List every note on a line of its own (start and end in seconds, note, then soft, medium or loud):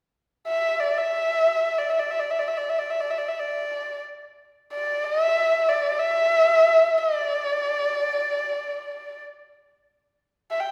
0.48 0.81 E5 medium
0.80 1.00 D5 medium
0.98 1.80 E5 medium
1.78 1.91 D5 medium
1.89 2.00 E5 medium
1.99 2.12 D5 soft
2.10 2.21 E5 medium
2.19 2.32 D5 medium
2.30 2.41 E5 medium
2.39 2.49 D5 medium
2.48 2.59 E5 medium
2.58 2.71 D5 medium
2.69 2.80 E5 medium
2.79 2.91 D5 medium
2.90 3.02 E5 medium
3.00 3.12 D5 medium
3.10 3.20 E5 medium
3.18 3.30 D5 medium
3.28 3.41 E5 medium
3.40 4.01 D5 medium
4.72 5.05 D5 medium
5.04 5.23 D#5 medium
5.23 5.70 E5 medium
5.68 6.01 D5 medium
5.99 6.99 E5 medium
6.98 7.17 D#5 medium
7.17 9.22 D5 medium
10.51 10.62 E5 medium
10.60 10.71 G5 medium